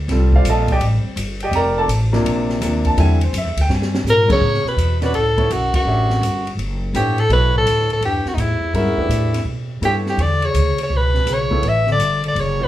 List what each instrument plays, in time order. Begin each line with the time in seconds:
0.08 upright bass C2, grand piano G3 C4 F4 A4, snare, ride
0.32 grand piano C5 D5 F5, kick
0.37 grand piano F4
0.45 upright bass A#1, hi-hat pedal, ride
0.49 grand piano A4 D#5 F5 A5
0.68 grand piano D5, kick, ride
0.72 grand piano G4 D#5 G5
0.80 upright bass A1, ride
1.04 muted upright bass stroke
1.16 upright bass G1, hi-hat pedal, ride
1.40 grand piano G4 D5 G5, ride
1.45 grand piano D#5
1.51 upright bass F1, grand piano A#5, ride
1.57 grand piano A#4 D5 G5
1.78 grand piano A4 D5 A5
1.88 upright bass A1, hi-hat pedal, ride
2.12 grand piano C3 F3 A#3 D4, snare
2.24 upright bass A#1, ride
2.50 snare
2.61 upright bass D#2, grand piano C3 F3 A#3 D4, snare, hi-hat pedal, ride
2.85 grand piano A5, kick, ride
2.97 upright bass E2, grand piano D3 G3 C4 E4 G#5, ride
3.21 grand piano C5, ride
3.33 upright bass F#2, hi-hat pedal, ride
3.38 grand piano E5
3.45 upright bass E2
3.56 upright bass D2, ride
3.61 grand piano G5
3.69 upright bass G2, snare
3.74 grand piano G#5
3.82 snare
3.94 snare
4.04 upright bass G#2, snare, hi-hat pedal
4.08 bass clarinet A#2, soprano saxophone A#4
4.28 grand piano C#3 F#3 B3 C#4, bass clarinet C#3, muted upright bass stroke, kick, crash
4.32 soprano saxophone C#5
4.41 upright bass A2
4.54 snare
4.64 bass clarinet B2, muted upright bass stroke, snare
4.68 soprano saxophone B4
4.77 upright bass E2, hi-hat pedal, ride
5.02 bass clarinet B2, grand piano C#4 F#4 B4 D5, soprano saxophone B4, snare, ride
5.14 upright bass C#2, bass clarinet A2, soprano saxophone A4, ride
5.37 grand piano B3 E4 A4 C#5, kick, ride
5.50 upright bass B1, bass clarinet F#2, soprano saxophone F#4, hi-hat pedal, ride
5.73 bass clarinet F#2, soprano saxophone F#4, muted upright bass stroke, kick, ride
5.85 upright bass A1, grand piano D4 G4 C#5 E5
6.10 snare
6.21 upright bass G1, hi-hat pedal, ride
6.47 ride
6.57 upright bass F#1, ride
6.94 upright bass A1, bass clarinet G2, grand piano B3 E4 A4 C#5, soprano saxophone G4, hi-hat pedal, ride
7.18 bass clarinet A2, soprano saxophone A4, ride
7.29 upright bass B1, bass clarinet B2, grand piano B3 E4 A4 C#5, soprano saxophone B4, ride
7.54 bass clarinet A2, soprano saxophone A4
7.66 upright bass D2, hi-hat pedal, ride
7.90 bass clarinet A2, soprano saxophone A4, ride
8.01 upright bass E2, bass clarinet G2, ride
8.05 soprano saxophone G4
8.25 bass clarinet F#2, soprano saxophone F#4, muted upright bass stroke, snare
8.33 bass clarinet D#2, upright bass A2, soprano saxophone D#4
8.38 bass clarinet E2, soprano saxophone E4, hi-hat pedal, ride
8.60 muted upright bass stroke
8.73 bass clarinet E2, upright bass G2, grand piano G#3 C#4 F#4 A#4, soprano saxophone E4, ride
8.85 upright bass F#2
8.98 upright bass E2, grand piano A3 D4 G4 B4
9.09 upright bass A2, hi-hat pedal, ride
9.34 snare, ride
9.45 upright bass B2
9.81 upright bass G2, bass clarinet G2, grand piano B3 E4 A4 C#5, soprano saxophone G4, hi-hat pedal, ride
10.06 bass clarinet G2, soprano saxophone G4, snare
10.17 upright bass E2, ride
10.21 bass clarinet D3, soprano saxophone D5
10.42 bass clarinet C#3, soprano saxophone C#5, ride
10.54 upright bass D2, hi-hat pedal, ride
10.78 bass clarinet C#3, muted upright bass stroke, ride
10.83 soprano saxophone C#5
10.90 upright bass C#2, bass clarinet B2
10.97 soprano saxophone B4
11.14 snare
11.26 upright bass B1, bass clarinet C#3, snare, hi-hat pedal, ride
11.33 soprano saxophone C#5
11.50 grand piano B3 E4 A4 C#5, kick
11.62 upright bass A1, bass clarinet E3, ride
11.68 soprano saxophone E5
11.87 bass clarinet D3, snare
11.92 soprano saxophone D5
11.98 upright bass G1, hi-hat pedal, ride
12.24 bass clarinet D3, ride
12.28 soprano saxophone D5
12.35 upright bass F#1, bass clarinet C#3, ride
12.41 soprano saxophone C#5
12.60 bass clarinet B2, grand piano C#4 F#4 B4 D5
12.64 soprano saxophone B4